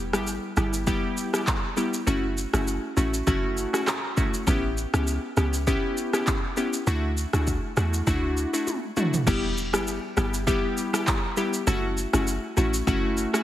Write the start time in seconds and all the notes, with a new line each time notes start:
Already playing: E1
0.13 G1 G3 B3 E4 G4, cross-stick, shaker
0.27 shaker
0.57 G1 G3 B3 E4 G4, cross-stick, shaker
0.73 shaker
0.87 G3 B3 E4 G4, kick, shaker
1.17 shaker
1.33 G3 B3 E4 G4, cross-stick, shaker
1.47 kick, clap, shaker
1.77 G3 B3 E4 G4, shaker
1.94 shaker
2.07 F#1 A3 C#4 E4 F#4, shaker
2.38 shaker
2.53 F#1 A3 C#4 E4 F#4, cross-stick, shaker
2.67 shaker
2.97 A1 A3 C#4 E4 F#4, shaker
3.14 shaker
3.27 F#1 A3 C#4 E4 F#4, kick, shaker
3.57 shaker
3.73 A3 C#4 E4 F#4, cross-stick, shaker
3.87 cross-stick, clap, shaker
4.17 A3 C#4 E4 F#4, kick, shaker
4.34 shaker
4.47 A1 B3 C#4 E4 G4, kick, shaker
4.78 shaker
4.93 C#2 B3 C#4 E4 G4, cross-stick, shaker
5.07 shaker
5.37 C#2 B3 C#4 E4 G4, cross-stick, shaker
5.54 shaker
5.67 B3 C#4 E4 G4, kick, shaker
5.97 shaker
6.13 B3 C#4 E4 G4, cross-stick, shaker
6.27 kick, clap, shaker
6.57 B3 C#4 E4 G4, shaker
6.73 shaker
6.87 D2 A3 D4 E4 F#4, shaker
7.17 shaker
7.33 D2 A3 D4 E4 F#4, cross-stick, shaker
7.47 kick, shaker
7.77 E2 A3 D4 E4 F#4, cross-stick, shaker
7.94 shaker
8.07 D2 A3 D4 E4 F#4, kick, shaker
8.37 shaker
8.53 A3 D4 E4 F#4, shaker
8.67 high tom, shaker
8.97 A3 D4 E4 F#4, mid tom, shaker
9.14 floor tom, shaker
9.27 E1 G3 B3 E4 G4, kick, crash, shaker
9.58 shaker
9.73 G1 G3 B3 E4 G4, cross-stick, shaker
9.87 shaker
10.17 G1 G3 B3 E4 G4, cross-stick, shaker
10.34 shaker
10.47 G3 B3 E4 G4, kick, shaker
10.77 shaker
10.93 G3 B3 E4 G4, cross-stick, shaker
11.07 kick, clap, shaker
11.37 G3 B3 E4 G4, shaker
11.54 shaker
11.67 F#1 A3 C#4 E4 F#4, shaker
11.98 shaker
12.13 F#1 A3 C#4 E4 F#4, cross-stick, shaker
12.27 shaker
12.57 A1 A3 C#4 E4 F#4, shaker
12.74 shaker
12.87 F#1 A3 C#4 E4 F#4, kick, shaker
13.17 shaker
13.33 A3 C#4 E4 F#4, cross-stick, shaker